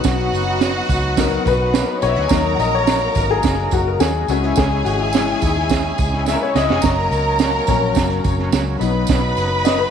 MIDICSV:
0, 0, Header, 1, 6, 480
1, 0, Start_track
1, 0, Tempo, 564972
1, 38, Time_signature, 4, 2, 24, 8
1, 8414, End_track
2, 0, Start_track
2, 0, Title_t, "Violin section"
2, 0, Program_c, 0, 48
2, 0, Note_on_c, 0, 66, 91
2, 0, Note_on_c, 0, 78, 100
2, 1462, Note_off_c, 0, 66, 0
2, 1462, Note_off_c, 0, 78, 0
2, 1544, Note_on_c, 0, 58, 49
2, 1547, Note_on_c, 0, 70, 65
2, 1601, Note_on_c, 0, 71, 70
2, 1603, Note_off_c, 0, 58, 0
2, 1604, Note_on_c, 0, 59, 54
2, 1605, Note_off_c, 0, 70, 0
2, 1662, Note_off_c, 0, 71, 0
2, 1663, Note_off_c, 0, 59, 0
2, 1663, Note_on_c, 0, 73, 64
2, 1670, Note_on_c, 0, 61, 63
2, 1717, Note_on_c, 0, 63, 68
2, 1722, Note_on_c, 0, 75, 78
2, 1723, Note_off_c, 0, 73, 0
2, 1726, Note_off_c, 0, 61, 0
2, 1775, Note_on_c, 0, 64, 77
2, 1777, Note_on_c, 0, 76, 89
2, 1780, Note_off_c, 0, 63, 0
2, 1782, Note_off_c, 0, 75, 0
2, 1837, Note_on_c, 0, 66, 72
2, 1838, Note_on_c, 0, 78, 86
2, 1839, Note_off_c, 0, 64, 0
2, 1840, Note_off_c, 0, 76, 0
2, 1886, Note_on_c, 0, 80, 97
2, 1890, Note_on_c, 0, 68, 83
2, 1900, Note_off_c, 0, 66, 0
2, 1900, Note_off_c, 0, 78, 0
2, 1939, Note_on_c, 0, 82, 112
2, 1943, Note_on_c, 0, 70, 93
2, 1954, Note_off_c, 0, 80, 0
2, 1956, Note_off_c, 0, 68, 0
2, 3364, Note_off_c, 0, 82, 0
2, 3366, Note_off_c, 0, 70, 0
2, 3643, Note_on_c, 0, 68, 92
2, 3645, Note_on_c, 0, 80, 105
2, 5303, Note_off_c, 0, 68, 0
2, 5304, Note_off_c, 0, 80, 0
2, 5384, Note_on_c, 0, 58, 49
2, 5385, Note_on_c, 0, 70, 57
2, 5434, Note_on_c, 0, 59, 55
2, 5436, Note_on_c, 0, 71, 66
2, 5445, Note_off_c, 0, 58, 0
2, 5445, Note_off_c, 0, 70, 0
2, 5500, Note_off_c, 0, 59, 0
2, 5501, Note_off_c, 0, 71, 0
2, 5505, Note_on_c, 0, 73, 68
2, 5506, Note_on_c, 0, 61, 56
2, 5562, Note_on_c, 0, 63, 68
2, 5563, Note_on_c, 0, 75, 76
2, 5565, Note_off_c, 0, 73, 0
2, 5566, Note_off_c, 0, 61, 0
2, 5624, Note_off_c, 0, 63, 0
2, 5624, Note_off_c, 0, 75, 0
2, 5629, Note_on_c, 0, 76, 76
2, 5632, Note_on_c, 0, 64, 68
2, 5686, Note_on_c, 0, 78, 85
2, 5687, Note_off_c, 0, 76, 0
2, 5688, Note_on_c, 0, 66, 71
2, 5689, Note_off_c, 0, 64, 0
2, 5742, Note_on_c, 0, 68, 81
2, 5745, Note_on_c, 0, 80, 91
2, 5746, Note_off_c, 0, 78, 0
2, 5747, Note_off_c, 0, 66, 0
2, 5801, Note_on_c, 0, 82, 103
2, 5803, Note_on_c, 0, 70, 92
2, 5804, Note_off_c, 0, 68, 0
2, 5805, Note_off_c, 0, 80, 0
2, 7212, Note_off_c, 0, 82, 0
2, 7213, Note_off_c, 0, 70, 0
2, 7480, Note_on_c, 0, 83, 102
2, 7484, Note_on_c, 0, 71, 90
2, 8414, Note_off_c, 0, 71, 0
2, 8414, Note_off_c, 0, 83, 0
2, 8414, End_track
3, 0, Start_track
3, 0, Title_t, "Grand piano"
3, 0, Program_c, 1, 0
3, 0, Note_on_c, 1, 54, 53
3, 0, Note_on_c, 1, 59, 44
3, 0, Note_on_c, 1, 63, 58
3, 0, Note_on_c, 1, 66, 80
3, 485, Note_off_c, 1, 54, 0
3, 487, Note_off_c, 1, 59, 0
3, 488, Note_off_c, 1, 63, 0
3, 495, Note_off_c, 1, 66, 0
3, 1002, Note_on_c, 1, 54, 43
3, 1003, Note_on_c, 1, 59, 38
3, 1005, Note_on_c, 1, 63, 51
3, 1016, Note_on_c, 1, 70, 89
3, 1218, Note_off_c, 1, 54, 0
3, 1219, Note_off_c, 1, 59, 0
3, 1220, Note_off_c, 1, 63, 0
3, 1233, Note_off_c, 1, 70, 0
3, 1255, Note_on_c, 1, 71, 102
3, 1721, Note_on_c, 1, 73, 111
3, 1743, Note_off_c, 1, 71, 0
3, 1959, Note_on_c, 1, 54, 56
3, 1960, Note_on_c, 1, 58, 52
3, 1968, Note_on_c, 1, 63, 63
3, 2163, Note_on_c, 1, 78, 71
3, 2186, Note_off_c, 1, 73, 0
3, 2198, Note_off_c, 1, 78, 0
3, 2205, Note_on_c, 1, 75, 97
3, 2281, Note_off_c, 1, 54, 0
3, 2281, Note_off_c, 1, 58, 0
3, 2286, Note_off_c, 1, 63, 0
3, 2328, Note_off_c, 1, 75, 0
3, 2334, Note_on_c, 1, 73, 102
3, 2664, Note_off_c, 1, 73, 0
3, 2699, Note_on_c, 1, 70, 91
3, 2804, Note_off_c, 1, 70, 0
3, 2809, Note_on_c, 1, 68, 112
3, 3170, Note_on_c, 1, 66, 92
3, 3178, Note_off_c, 1, 68, 0
3, 3291, Note_off_c, 1, 66, 0
3, 3293, Note_on_c, 1, 70, 87
3, 3399, Note_on_c, 1, 68, 93
3, 3413, Note_off_c, 1, 70, 0
3, 3645, Note_on_c, 1, 49, 50
3, 3649, Note_off_c, 1, 68, 0
3, 3652, Note_on_c, 1, 56, 51
3, 3654, Note_on_c, 1, 66, 83
3, 3656, Note_on_c, 1, 61, 64
3, 3763, Note_on_c, 1, 64, 87
3, 3773, Note_off_c, 1, 66, 0
3, 3885, Note_on_c, 1, 68, 87
3, 3888, Note_off_c, 1, 64, 0
3, 4119, Note_on_c, 1, 66, 84
3, 4133, Note_off_c, 1, 68, 0
3, 4239, Note_on_c, 1, 64, 82
3, 4246, Note_off_c, 1, 66, 0
3, 4354, Note_off_c, 1, 56, 0
3, 4358, Note_off_c, 1, 61, 0
3, 4364, Note_on_c, 1, 52, 50
3, 4367, Note_on_c, 1, 56, 46
3, 4370, Note_on_c, 1, 61, 53
3, 4581, Note_off_c, 1, 52, 0
3, 4582, Note_off_c, 1, 56, 0
3, 4584, Note_off_c, 1, 61, 0
3, 4606, Note_on_c, 1, 63, 70
3, 4613, Note_off_c, 1, 64, 0
3, 4717, Note_off_c, 1, 63, 0
3, 4724, Note_on_c, 1, 64, 64
3, 4948, Note_off_c, 1, 64, 0
3, 5335, Note_on_c, 1, 76, 98
3, 5378, Note_off_c, 1, 76, 0
3, 5461, Note_on_c, 1, 73, 78
3, 5531, Note_off_c, 1, 49, 0
3, 5572, Note_on_c, 1, 75, 104
3, 5576, Note_off_c, 1, 73, 0
3, 6523, Note_on_c, 1, 54, 54
3, 6528, Note_on_c, 1, 58, 46
3, 6528, Note_on_c, 1, 73, 66
3, 6530, Note_on_c, 1, 61, 59
3, 6556, Note_off_c, 1, 75, 0
3, 6749, Note_off_c, 1, 73, 0
3, 7448, Note_off_c, 1, 54, 0
3, 7450, Note_off_c, 1, 58, 0
3, 7451, Note_off_c, 1, 61, 0
3, 7471, Note_on_c, 1, 54, 56
3, 7476, Note_on_c, 1, 59, 47
3, 7479, Note_on_c, 1, 63, 59
3, 7795, Note_off_c, 1, 54, 0
3, 7797, Note_off_c, 1, 59, 0
3, 7799, Note_off_c, 1, 63, 0
3, 8197, Note_on_c, 1, 75, 97
3, 8310, Note_off_c, 1, 75, 0
3, 8313, Note_on_c, 1, 71, 88
3, 8414, Note_off_c, 1, 71, 0
3, 8414, End_track
4, 0, Start_track
4, 0, Title_t, "Tonewheel organ"
4, 0, Program_c, 2, 16
4, 0, Note_on_c, 2, 54, 58
4, 0, Note_on_c, 2, 59, 57
4, 0, Note_on_c, 2, 63, 72
4, 1929, Note_off_c, 2, 54, 0
4, 1940, Note_off_c, 2, 63, 0
4, 1942, Note_off_c, 2, 59, 0
4, 1961, Note_on_c, 2, 63, 65
4, 1962, Note_on_c, 2, 54, 56
4, 1964, Note_on_c, 2, 58, 57
4, 3627, Note_off_c, 2, 63, 0
4, 3628, Note_off_c, 2, 54, 0
4, 3629, Note_off_c, 2, 58, 0
4, 3648, Note_on_c, 2, 61, 74
4, 3649, Note_on_c, 2, 64, 69
4, 3650, Note_on_c, 2, 56, 64
4, 5786, Note_off_c, 2, 56, 0
4, 5786, Note_off_c, 2, 64, 0
4, 5794, Note_on_c, 2, 58, 56
4, 5798, Note_on_c, 2, 54, 56
4, 7450, Note_off_c, 2, 61, 0
4, 7460, Note_off_c, 2, 58, 0
4, 7476, Note_on_c, 2, 63, 72
4, 7479, Note_on_c, 2, 59, 62
4, 8414, Note_off_c, 2, 54, 0
4, 8414, Note_off_c, 2, 59, 0
4, 8414, Note_off_c, 2, 63, 0
4, 8414, End_track
5, 0, Start_track
5, 0, Title_t, "Fingered electric bass"
5, 0, Program_c, 3, 33
5, 39, Note_on_c, 3, 35, 109
5, 243, Note_off_c, 3, 35, 0
5, 272, Note_on_c, 3, 30, 79
5, 682, Note_off_c, 3, 30, 0
5, 758, Note_on_c, 3, 37, 84
5, 1166, Note_off_c, 3, 37, 0
5, 1244, Note_on_c, 3, 35, 82
5, 1548, Note_off_c, 3, 35, 0
5, 1721, Note_on_c, 3, 35, 88
5, 1823, Note_off_c, 3, 35, 0
5, 1839, Note_on_c, 3, 38, 80
5, 1942, Note_off_c, 3, 38, 0
5, 1959, Note_on_c, 3, 39, 109
5, 2164, Note_off_c, 3, 39, 0
5, 2193, Note_on_c, 3, 34, 92
5, 2604, Note_off_c, 3, 34, 0
5, 2684, Note_on_c, 3, 32, 92
5, 2887, Note_off_c, 3, 32, 0
5, 2924, Note_on_c, 3, 30, 92
5, 3128, Note_off_c, 3, 30, 0
5, 3166, Note_on_c, 3, 30, 78
5, 3368, Note_off_c, 3, 30, 0
5, 3393, Note_on_c, 3, 39, 93
5, 3601, Note_off_c, 3, 39, 0
5, 3637, Note_on_c, 3, 37, 93
5, 3844, Note_off_c, 3, 37, 0
5, 3887, Note_on_c, 3, 37, 104
5, 4090, Note_off_c, 3, 37, 0
5, 4122, Note_on_c, 3, 32, 86
5, 4530, Note_off_c, 3, 32, 0
5, 4612, Note_on_c, 3, 39, 84
5, 5015, Note_off_c, 3, 39, 0
5, 5089, Note_on_c, 3, 37, 80
5, 5392, Note_off_c, 3, 37, 0
5, 5566, Note_on_c, 3, 37, 77
5, 5667, Note_off_c, 3, 37, 0
5, 5681, Note_on_c, 3, 29, 77
5, 5785, Note_off_c, 3, 29, 0
5, 5805, Note_on_c, 3, 30, 108
5, 6008, Note_off_c, 3, 30, 0
5, 6040, Note_on_c, 3, 37, 87
5, 6448, Note_off_c, 3, 37, 0
5, 6528, Note_on_c, 3, 34, 76
5, 6729, Note_off_c, 3, 34, 0
5, 6765, Note_on_c, 3, 30, 86
5, 6967, Note_off_c, 3, 30, 0
5, 7006, Note_on_c, 3, 30, 93
5, 7208, Note_off_c, 3, 30, 0
5, 7240, Note_on_c, 3, 37, 88
5, 7444, Note_off_c, 3, 37, 0
5, 7480, Note_on_c, 3, 35, 90
5, 7683, Note_off_c, 3, 35, 0
5, 7725, Note_on_c, 3, 35, 113
5, 7926, Note_off_c, 3, 35, 0
5, 7953, Note_on_c, 3, 30, 76
5, 8361, Note_off_c, 3, 30, 0
5, 8414, End_track
6, 0, Start_track
6, 0, Title_t, "Drums"
6, 31, Note_on_c, 9, 54, 92
6, 37, Note_on_c, 9, 42, 91
6, 39, Note_on_c, 9, 36, 104
6, 41, Note_on_c, 9, 38, 114
6, 116, Note_off_c, 9, 54, 0
6, 122, Note_off_c, 9, 42, 0
6, 124, Note_off_c, 9, 36, 0
6, 125, Note_off_c, 9, 38, 0
6, 278, Note_on_c, 9, 42, 73
6, 294, Note_on_c, 9, 54, 46
6, 363, Note_off_c, 9, 42, 0
6, 378, Note_off_c, 9, 54, 0
6, 518, Note_on_c, 9, 38, 104
6, 519, Note_on_c, 9, 42, 74
6, 521, Note_on_c, 9, 54, 78
6, 603, Note_off_c, 9, 38, 0
6, 604, Note_off_c, 9, 42, 0
6, 606, Note_off_c, 9, 54, 0
6, 754, Note_on_c, 9, 42, 69
6, 758, Note_on_c, 9, 36, 84
6, 761, Note_on_c, 9, 54, 61
6, 839, Note_off_c, 9, 42, 0
6, 843, Note_off_c, 9, 36, 0
6, 846, Note_off_c, 9, 54, 0
6, 995, Note_on_c, 9, 54, 91
6, 996, Note_on_c, 9, 36, 90
6, 999, Note_on_c, 9, 42, 77
6, 1000, Note_on_c, 9, 38, 97
6, 1080, Note_off_c, 9, 54, 0
6, 1081, Note_off_c, 9, 36, 0
6, 1084, Note_off_c, 9, 42, 0
6, 1085, Note_off_c, 9, 38, 0
6, 1112, Note_on_c, 9, 42, 49
6, 1197, Note_off_c, 9, 42, 0
6, 1235, Note_on_c, 9, 42, 65
6, 1241, Note_on_c, 9, 36, 87
6, 1246, Note_on_c, 9, 54, 63
6, 1320, Note_off_c, 9, 42, 0
6, 1325, Note_off_c, 9, 36, 0
6, 1331, Note_off_c, 9, 54, 0
6, 1473, Note_on_c, 9, 42, 77
6, 1476, Note_on_c, 9, 38, 113
6, 1484, Note_on_c, 9, 54, 83
6, 1558, Note_off_c, 9, 42, 0
6, 1561, Note_off_c, 9, 38, 0
6, 1569, Note_off_c, 9, 54, 0
6, 1716, Note_on_c, 9, 54, 59
6, 1718, Note_on_c, 9, 42, 76
6, 1801, Note_off_c, 9, 54, 0
6, 1803, Note_off_c, 9, 42, 0
6, 1838, Note_on_c, 9, 42, 58
6, 1923, Note_off_c, 9, 42, 0
6, 1948, Note_on_c, 9, 54, 95
6, 1959, Note_on_c, 9, 36, 97
6, 1959, Note_on_c, 9, 42, 96
6, 1962, Note_on_c, 9, 38, 123
6, 2032, Note_off_c, 9, 54, 0
6, 2044, Note_off_c, 9, 36, 0
6, 2044, Note_off_c, 9, 42, 0
6, 2047, Note_off_c, 9, 38, 0
6, 2205, Note_on_c, 9, 42, 74
6, 2206, Note_on_c, 9, 54, 42
6, 2290, Note_off_c, 9, 42, 0
6, 2291, Note_off_c, 9, 54, 0
6, 2440, Note_on_c, 9, 54, 84
6, 2442, Note_on_c, 9, 38, 118
6, 2443, Note_on_c, 9, 42, 80
6, 2525, Note_off_c, 9, 54, 0
6, 2527, Note_off_c, 9, 38, 0
6, 2528, Note_off_c, 9, 42, 0
6, 2675, Note_on_c, 9, 54, 62
6, 2680, Note_on_c, 9, 42, 76
6, 2683, Note_on_c, 9, 36, 86
6, 2760, Note_off_c, 9, 54, 0
6, 2765, Note_off_c, 9, 42, 0
6, 2768, Note_off_c, 9, 36, 0
6, 2913, Note_on_c, 9, 54, 92
6, 2921, Note_on_c, 9, 36, 95
6, 2928, Note_on_c, 9, 42, 72
6, 2929, Note_on_c, 9, 38, 115
6, 2998, Note_off_c, 9, 54, 0
6, 3006, Note_off_c, 9, 36, 0
6, 3013, Note_off_c, 9, 42, 0
6, 3014, Note_off_c, 9, 38, 0
6, 3154, Note_on_c, 9, 54, 61
6, 3159, Note_on_c, 9, 42, 61
6, 3165, Note_on_c, 9, 36, 91
6, 3239, Note_off_c, 9, 54, 0
6, 3244, Note_off_c, 9, 42, 0
6, 3249, Note_off_c, 9, 36, 0
6, 3400, Note_on_c, 9, 54, 94
6, 3402, Note_on_c, 9, 42, 74
6, 3405, Note_on_c, 9, 38, 109
6, 3485, Note_off_c, 9, 54, 0
6, 3487, Note_off_c, 9, 42, 0
6, 3490, Note_off_c, 9, 38, 0
6, 3640, Note_on_c, 9, 54, 58
6, 3651, Note_on_c, 9, 42, 77
6, 3724, Note_off_c, 9, 54, 0
6, 3736, Note_off_c, 9, 42, 0
6, 3768, Note_on_c, 9, 42, 60
6, 3853, Note_off_c, 9, 42, 0
6, 3871, Note_on_c, 9, 54, 103
6, 3888, Note_on_c, 9, 36, 110
6, 3889, Note_on_c, 9, 42, 93
6, 3893, Note_on_c, 9, 38, 120
6, 3956, Note_off_c, 9, 54, 0
6, 3972, Note_off_c, 9, 36, 0
6, 3974, Note_off_c, 9, 42, 0
6, 3977, Note_off_c, 9, 38, 0
6, 4130, Note_on_c, 9, 54, 46
6, 4132, Note_on_c, 9, 42, 81
6, 4215, Note_off_c, 9, 54, 0
6, 4217, Note_off_c, 9, 42, 0
6, 4355, Note_on_c, 9, 54, 79
6, 4374, Note_on_c, 9, 38, 107
6, 4375, Note_on_c, 9, 42, 79
6, 4440, Note_off_c, 9, 54, 0
6, 4459, Note_off_c, 9, 38, 0
6, 4460, Note_off_c, 9, 42, 0
6, 4601, Note_on_c, 9, 54, 58
6, 4607, Note_on_c, 9, 42, 77
6, 4608, Note_on_c, 9, 36, 89
6, 4686, Note_off_c, 9, 54, 0
6, 4691, Note_off_c, 9, 42, 0
6, 4693, Note_off_c, 9, 36, 0
6, 4837, Note_on_c, 9, 54, 87
6, 4846, Note_on_c, 9, 36, 88
6, 4851, Note_on_c, 9, 42, 76
6, 4852, Note_on_c, 9, 38, 105
6, 4922, Note_off_c, 9, 54, 0
6, 4931, Note_off_c, 9, 36, 0
6, 4936, Note_off_c, 9, 42, 0
6, 4937, Note_off_c, 9, 38, 0
6, 5080, Note_on_c, 9, 54, 59
6, 5082, Note_on_c, 9, 42, 62
6, 5088, Note_on_c, 9, 36, 87
6, 5165, Note_off_c, 9, 54, 0
6, 5167, Note_off_c, 9, 42, 0
6, 5173, Note_off_c, 9, 36, 0
6, 5210, Note_on_c, 9, 38, 35
6, 5295, Note_off_c, 9, 38, 0
6, 5321, Note_on_c, 9, 54, 89
6, 5333, Note_on_c, 9, 38, 61
6, 5406, Note_off_c, 9, 54, 0
6, 5418, Note_off_c, 9, 38, 0
6, 5568, Note_on_c, 9, 38, 86
6, 5571, Note_on_c, 9, 54, 56
6, 5653, Note_off_c, 9, 38, 0
6, 5656, Note_off_c, 9, 54, 0
6, 5694, Note_on_c, 9, 38, 93
6, 5779, Note_off_c, 9, 38, 0
6, 5792, Note_on_c, 9, 54, 102
6, 5806, Note_on_c, 9, 42, 90
6, 5808, Note_on_c, 9, 36, 105
6, 5810, Note_on_c, 9, 38, 121
6, 5877, Note_off_c, 9, 54, 0
6, 5891, Note_off_c, 9, 42, 0
6, 5893, Note_off_c, 9, 36, 0
6, 5895, Note_off_c, 9, 38, 0
6, 6044, Note_on_c, 9, 42, 76
6, 6051, Note_on_c, 9, 54, 48
6, 6129, Note_off_c, 9, 42, 0
6, 6136, Note_off_c, 9, 54, 0
6, 6277, Note_on_c, 9, 54, 80
6, 6286, Note_on_c, 9, 38, 109
6, 6287, Note_on_c, 9, 42, 80
6, 6362, Note_off_c, 9, 54, 0
6, 6371, Note_off_c, 9, 38, 0
6, 6372, Note_off_c, 9, 42, 0
6, 6516, Note_on_c, 9, 54, 65
6, 6522, Note_on_c, 9, 42, 84
6, 6526, Note_on_c, 9, 36, 86
6, 6601, Note_off_c, 9, 54, 0
6, 6607, Note_off_c, 9, 42, 0
6, 6611, Note_off_c, 9, 36, 0
6, 6753, Note_on_c, 9, 54, 90
6, 6765, Note_on_c, 9, 36, 87
6, 6770, Note_on_c, 9, 42, 75
6, 6771, Note_on_c, 9, 38, 106
6, 6838, Note_off_c, 9, 54, 0
6, 6850, Note_off_c, 9, 36, 0
6, 6855, Note_off_c, 9, 42, 0
6, 6856, Note_off_c, 9, 38, 0
6, 6883, Note_on_c, 9, 42, 53
6, 6968, Note_off_c, 9, 42, 0
6, 7003, Note_on_c, 9, 54, 61
6, 7004, Note_on_c, 9, 42, 66
6, 7007, Note_on_c, 9, 36, 90
6, 7088, Note_off_c, 9, 54, 0
6, 7089, Note_off_c, 9, 42, 0
6, 7092, Note_off_c, 9, 36, 0
6, 7127, Note_on_c, 9, 38, 37
6, 7212, Note_off_c, 9, 38, 0
6, 7242, Note_on_c, 9, 54, 92
6, 7244, Note_on_c, 9, 42, 77
6, 7247, Note_on_c, 9, 38, 119
6, 7327, Note_off_c, 9, 54, 0
6, 7329, Note_off_c, 9, 42, 0
6, 7332, Note_off_c, 9, 38, 0
6, 7484, Note_on_c, 9, 54, 53
6, 7487, Note_on_c, 9, 42, 74
6, 7569, Note_off_c, 9, 54, 0
6, 7572, Note_off_c, 9, 42, 0
6, 7704, Note_on_c, 9, 54, 96
6, 7725, Note_on_c, 9, 36, 107
6, 7726, Note_on_c, 9, 42, 99
6, 7729, Note_on_c, 9, 38, 116
6, 7789, Note_off_c, 9, 54, 0
6, 7810, Note_off_c, 9, 36, 0
6, 7811, Note_off_c, 9, 42, 0
6, 7814, Note_off_c, 9, 38, 0
6, 7958, Note_on_c, 9, 54, 47
6, 7970, Note_on_c, 9, 42, 81
6, 8043, Note_off_c, 9, 54, 0
6, 8055, Note_off_c, 9, 42, 0
6, 8198, Note_on_c, 9, 54, 83
6, 8210, Note_on_c, 9, 38, 112
6, 8211, Note_on_c, 9, 42, 83
6, 8283, Note_off_c, 9, 54, 0
6, 8295, Note_off_c, 9, 38, 0
6, 8296, Note_off_c, 9, 42, 0
6, 8414, End_track
0, 0, End_of_file